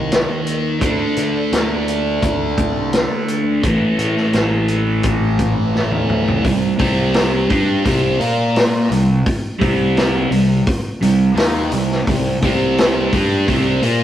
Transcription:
0.00 0.26 C2 medium
0.00 0.78 D#3 medium
0.00 0.79 A#3 medium
0.00 0.80 D#4 medium
0.12 snare loud
0.12 closed hi-hat medium
0.47 closed hi-hat medium
0.81 0.97 D2 medium
0.81 3.61 D3 medium
0.81 3.62 A3 medium
0.81 3.62 D4 medium
0.81 kick loud
0.81 closed hi-hat medium
1.16 1.33 D3 medium
1.16 closed hi-hat medium
1.52 2.18 D2 medium
1.52 snare loud
1.52 closed hi-hat medium
1.88 closed hi-hat soft
2.22 2.75 D2 medium
2.22 kick medium
2.22 closed hi-hat medium
2.58 kick medium
2.58 closed hi-hat medium
2.75 3.07 C2 medium
2.93 snare loud
2.93 closed hi-hat medium
3.28 closed hi-hat medium
3.64 3.79 A1 medium
3.64 6.43 A2 medium
3.64 6.44 E3 medium
3.64 6.45 A3 medium
3.64 kick loud
3.64 closed hi-hat medium
3.98 4.14 A2 medium
3.98 closed hi-hat medium
4.17 snare soft
4.33 5.00 A1 medium
4.33 snare loud
4.33 closed hi-hat medium
4.68 closed hi-hat medium
5.03 5.56 A1 medium
5.03 kick loud
5.03 closed hi-hat medium
5.39 kick medium
5.39 closed hi-hat medium
5.56 5.88 G1 medium
5.75 snare medium
5.91 6.08 D#2 medium
5.91 high tom medium
6.08 6.25 D2 medium
6.08 mid tom medium
6.27 6.43 C2 medium
6.27 floor tom medium
6.44 6.77 C2 medium
6.44 6.73 C3 medium
6.44 6.73 G3 medium
6.44 kick medium
6.44 open hi-hat medium
6.79 7.46 C2 medium
6.79 7.49 C3 medium
6.79 7.48 G3 medium
6.79 7.49 C4 medium
6.79 kick medium
6.79 open hi-hat medium
7.14 snare loud
7.14 open hi-hat medium
7.49 7.83 G2 medium
7.49 7.83 G3 medium
7.49 7.84 D4 medium
7.49 7.85 G4 medium
7.49 kick loud
7.49 open hi-hat soft
7.84 8.18 C2 medium
7.84 8.19 C3 medium
7.84 8.18 G3 medium
7.84 8.19 C4 medium
7.84 kick loud
7.84 open hi-hat medium
8.19 8.86 A#2 medium
8.19 8.89 A#3 medium
8.19 8.89 F4 medium
8.19 8.90 A#4 medium
8.19 open hi-hat soft
8.56 snare loud
8.56 open hi-hat medium
8.90 9.23 C2 medium
8.90 9.19 C3 medium
8.90 9.19 G3 medium
8.90 open hi-hat medium
9.26 kick medium
9.26 open hi-hat medium
9.59 10.28 C2 medium
9.59 10.29 C3 medium
9.59 10.30 G3 medium
9.59 10.30 C4 medium
9.59 kick loud
9.59 open hi-hat medium
9.97 snare loud
9.97 open hi-hat medium
10.30 10.64 C2 medium
10.30 10.59 C3 medium
10.30 10.59 G3 medium
10.30 open hi-hat medium
10.67 kick loud
10.67 open hi-hat medium
11.01 11.34 C2 medium
11.01 11.30 C3 medium
11.01 11.30 G3 medium
11.01 open hi-hat medium
11.34 11.69 D#2 medium
11.34 11.70 D#3 medium
11.34 11.70 A#3 medium
11.34 11.71 D#4 loud
11.34 snare loud
11.34 open hi-hat medium
11.72 12.05 C2 medium
11.72 12.00 C3 medium
11.72 12.00 G3 medium
11.72 open hi-hat medium
11.91 snare soft
12.07 12.40 C2 medium
12.07 12.36 C3 medium
12.07 12.36 G3 medium
12.07 kick medium
12.07 open hi-hat medium
12.43 13.09 C2 loud
12.43 13.12 C3 medium
12.43 13.12 G3 loud
12.43 13.12 C4 medium
12.43 kick loud
12.43 open hi-hat medium
12.78 snare loud
12.78 open hi-hat medium
13.13 13.46 G2 medium
13.13 13.46 G3 medium
13.13 13.48 D4 medium
13.13 13.48 G4 loud
13.13 kick medium
13.13 open hi-hat medium
13.47 13.81 C2 medium
13.47 13.82 C3 medium
13.47 13.82 G3 medium
13.47 13.83 C4 loud
13.47 kick medium
13.47 open hi-hat medium
13.81 14.04 A#2 medium
13.81 14.04 A#3 medium
13.81 14.04 F4 loud
13.81 14.04 A#4 medium
13.81 open hi-hat medium

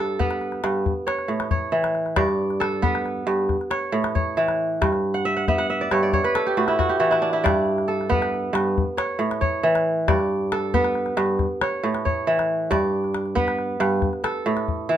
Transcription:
0.00 0.63 G2 medium
0.00 1.30 A4 medium
0.00 0.64 D5 medium
0.19 2.06 B3 medium
0.19 1.43 B4 medium
0.19 calabash thump medium
0.31 calabash click soft
0.41 calabash click soft
0.52 calabash click soft
0.64 0.91 G2 medium
0.64 calabash click medium
0.86 calabash thump medium
1.07 1.50 C#5 medium
1.07 calabash click medium
1.19 calabash click soft
1.28 2.23 A2 medium
1.28 calabash click soft
1.40 calabash click medium
1.51 2.22 C#5 medium
1.51 calabash thump medium
1.72 2.23 E3 medium
1.84 calabash click soft
1.95 calabash click soft
2.06 calabash click soft
2.16 3.25 G2 medium
2.16 3.27 D5 medium
2.16 calabash thump medium
2.16 calabash click medium
2.28 calabash click soft
2.50 calabash click soft
2.60 3.92 A4 medium
2.60 calabash click medium
2.72 calabash click soft
2.82 4.69 B3 medium
2.82 4.06 B4 medium
2.82 calabash thump medium
2.95 calabash click soft
3.06 calabash click soft
3.27 3.55 G2 medium
3.49 calabash thump medium
3.49 calabash click soft
3.61 calabash click soft
3.71 4.15 C#5 medium
3.71 calabash click medium
3.92 4.86 A2 medium
4.04 calabash click medium
4.15 5.30 C#5 medium
4.15 calabash thump medium
4.37 4.86 E3 medium
4.48 calabash click soft
4.82 5.91 G2 medium
4.82 calabash thump medium
4.82 calabash click medium
4.93 calabash click soft
5.14 5.36 F#5 medium
5.14 calabash click soft
5.25 5.48 E5 medium
5.37 5.58 F#5 medium
5.37 calabash click soft
5.48 7.34 B3 medium
5.48 5.69 E5 medium
5.48 calabash thump medium
5.58 5.98 F#5 medium
5.58 calabash click soft
5.70 6.73 E5 medium
5.70 calabash click soft
5.81 6.02 D5 medium
5.91 6.18 G2 medium
5.91 6.13 C#5 medium
5.91 calabash click medium
6.03 7.14 D5 medium
6.13 7.28 C#5 medium
6.13 calabash thump medium
6.13 calabash click soft
6.24 7.47 B4 medium
6.24 calabash click soft
6.35 7.67 A4 medium
6.35 calabash click medium
6.47 6.85 G4 medium
6.57 7.50 A2 medium
6.57 6.78 F#4 medium
6.68 7.10 E4 medium
6.68 calabash click soft
6.79 6.99 F#4 medium
6.79 calabash thump medium
6.89 8.31 G4 medium
7.00 7.50 E3 medium
7.00 7.50 F#4 medium
7.11 7.33 E4 medium
7.11 calabash click medium
7.22 8.90 D4 medium
7.33 8.90 E4 medium
7.44 8.52 G2 medium
7.44 8.54 D5 medium
7.44 calabash thump medium
7.44 calabash click medium
7.78 calabash click soft
7.88 9.20 A4 medium
8.01 calabash click soft
8.09 9.96 B3 medium
8.09 9.32 B4 medium
8.09 calabash thump medium
8.22 calabash click soft
8.34 calabash click soft
8.53 8.81 G2 medium
8.53 calabash click medium
8.78 calabash thump medium
8.78 calabash click soft
8.97 9.41 C#5 medium
8.97 calabash click medium
9.19 10.13 A2 medium
9.31 calabash click medium
9.41 10.14 C#5 medium
9.41 calabash thump medium
9.63 10.13 E3 medium
9.75 calabash click medium
10.08 11.16 G2 medium
10.08 11.19 D5 medium
10.08 calabash thump medium
10.08 calabash click medium
10.19 calabash click soft
10.52 11.84 A4 medium
10.52 calabash click medium
10.74 12.60 B3 medium
10.74 11.97 B4 medium
10.74 calabash thump medium
10.84 calabash click medium
10.95 calabash click soft
11.06 calabash click soft
11.17 11.44 G2 medium
11.17 calabash click medium
11.39 calabash thump medium
11.39 calabash click soft
11.61 12.05 C#5 medium
11.61 calabash click medium
11.83 12.75 A2 medium
11.83 calabash click soft
11.95 calabash click medium
12.05 12.77 C#5 medium
12.05 calabash thump medium
12.27 12.75 E3 medium
12.39 calabash click soft
12.71 13.79 G2 medium
12.71 13.82 D5 medium
12.71 calabash thump medium
12.71 calabash click medium
13.04 calabash click soft
13.14 calabash click medium
13.26 calabash click soft
13.35 14.97 B3 medium
13.35 14.59 B4 medium
13.35 calabash thump medium
13.48 calabash click soft
13.59 calabash click soft
13.80 14.07 G2 medium
13.80 calabash click medium
14.02 calabash thump medium
14.02 calabash click soft
14.13 calabash click soft
14.24 14.97 A4 medium
14.24 calabash click medium
14.46 14.97 A2 medium
14.57 calabash click soft
14.68 calabash thump medium
14.89 14.97 E3 medium

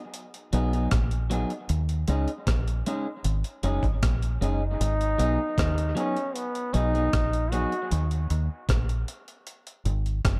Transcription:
0.14 closed hi-hat medium
0.34 closed hi-hat medium
0.53 0.87 B1 medium
0.53 0.72 F#3 medium
0.53 0.73 B3 medium
0.53 0.72 D#4 medium
0.53 0.72 G#4 medium
0.53 closed hi-hat medium
0.73 0.88 F#3 medium
0.73 0.88 B3 medium
0.73 0.88 D#4 medium
0.73 0.88 G#4 medium
0.73 closed hi-hat soft
0.91 1.44 A#1 medium
0.91 kick loud
0.91 cross-stick loud
0.91 closed hi-hat medium
1.11 closed hi-hat medium
1.30 1.50 F#3 medium
1.30 1.50 B3 medium
1.30 1.51 D#4 medium
1.30 1.51 G#4 loud
1.30 closed hi-hat medium
1.50 closed hi-hat soft
1.69 2.04 D#2 loud
1.69 closed hi-hat loud
1.89 closed hi-hat medium
2.08 2.26 C#2 loud
2.08 2.28 G#3 medium
2.08 2.28 C#4 medium
2.08 2.28 D#4 loud
2.08 2.29 G#4 loud
2.08 closed hi-hat medium
2.28 closed hi-hat soft
2.47 2.81 A#1 medium
2.47 kick loud
2.47 cross-stick loud
2.47 closed hi-hat loud
2.68 closed hi-hat medium
2.86 3.06 G#3 medium
2.86 3.06 C#4 medium
2.86 3.06 D#4 medium
2.86 3.07 G#4 medium
2.86 closed hi-hat medium
3.24 3.42 G#1 loud
3.24 closed hi-hat medium
3.44 closed hi-hat medium
3.63 3.81 F#1 loud
3.63 3.83 G#3 medium
3.63 3.83 C#4 loud
3.63 3.84 D#4 medium
3.63 3.84 G#4 medium
3.63 closed hi-hat medium
3.83 4.00 G#1 medium
3.83 kick medium
3.83 closed hi-hat soft
4.03 4.37 A#1 medium
4.03 kick loud
4.03 cross-stick loud
4.03 closed hi-hat medium
4.22 closed hi-hat medium
4.41 4.76 F#1 loud
4.41 4.61 G#3 medium
4.41 4.61 C#4 medium
4.41 4.62 D#4 medium
4.41 5.94 D#4 loud
4.41 4.62 G#4 medium
4.41 closed hi-hat medium
4.80 5.14 G#1 loud
4.80 closed hi-hat loud
5.01 closed hi-hat medium
5.18 5.37 B1 loud
5.18 5.38 F#3 medium
5.18 5.39 B3 loud
5.18 5.39 D#4 loud
5.18 5.39 G#4 medium
5.18 closed hi-hat medium
5.58 5.92 D#2 medium
5.58 kick loud
5.58 cross-stick loud
5.58 closed hi-hat loud
5.78 closed hi-hat medium
5.95 6.15 F#3 medium
5.95 6.16 B3 medium
5.95 6.36 C#4 medium
5.95 6.16 D#4 medium
5.95 6.17 G#4 medium
5.95 closed hi-hat medium
6.17 closed hi-hat soft
6.35 6.75 B3 medium
6.35 closed hi-hat medium
6.55 closed hi-hat medium
6.74 7.09 B1 medium
6.74 6.94 F#3 medium
6.74 6.94 B3 medium
6.74 7.53 D#4 loud
6.74 6.93 D#4 medium
6.74 6.93 G#4 medium
6.74 closed hi-hat medium
6.94 7.10 F#3 medium
6.94 7.09 B3 medium
6.94 7.09 D#4 medium
6.94 7.09 G#4 medium
6.94 closed hi-hat soft
7.13 7.65 A#1 medium
7.13 kick loud
7.13 cross-stick loud
7.13 closed hi-hat medium
7.33 closed hi-hat medium
7.51 7.72 F#3 medium
7.51 7.72 B3 medium
7.51 7.72 D#4 medium
7.51 7.90 F#4 loud
7.51 7.73 G#4 medium
7.51 closed hi-hat medium
7.72 closed hi-hat soft
7.91 8.26 D#2 loud
7.91 closed hi-hat loud
8.11 closed hi-hat medium
8.30 8.48 D#2 loud
8.30 closed hi-hat medium
8.69 9.03 A#1 medium
8.69 kick loud
8.69 cross-stick loud
8.69 closed hi-hat medium
8.89 closed hi-hat medium
9.08 closed hi-hat medium
9.28 closed hi-hat soft
9.47 closed hi-hat medium
9.67 closed hi-hat medium
9.85 10.20 G#1 loud
9.85 closed hi-hat medium
10.06 closed hi-hat soft
10.25 10.40 F#1 loud
10.25 kick loud
10.25 cross-stick loud
10.25 closed hi-hat medium

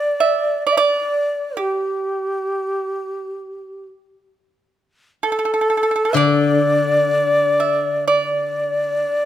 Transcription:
0.00 0.17 D5 medium
0.00 0.66 D5 loud
0.20 0.63 E5 medium
0.67 0.76 D5 medium
0.67 0.74 D5 medium
0.73 0.82 E5 medium
0.77 1.53 D5 medium
0.77 1.61 D5 loud
1.57 3.83 G4 medium
1.57 3.88 G4 medium
5.23 5.30 A4 medium
5.23 6.19 A4 loud
5.32 5.38 A4 soft
5.39 5.44 A4 soft
5.45 5.52 A4 soft
5.54 5.60 A4 soft
5.61 5.67 A4 soft
5.70 5.75 A4 soft
5.77 5.82 A4 soft
5.83 5.89 A4 soft
5.91 5.94 A4 soft
5.96 6.03 A4 soft
6.05 6.11 A4 soft
6.13 9.02 D3 medium
6.13 7.56 D5 medium
6.13 6.16 E5 medium
6.18 8.08 D5 loud
7.60 8.04 E5 medium
8.08 9.25 D5 medium
8.08 9.25 D5 loud

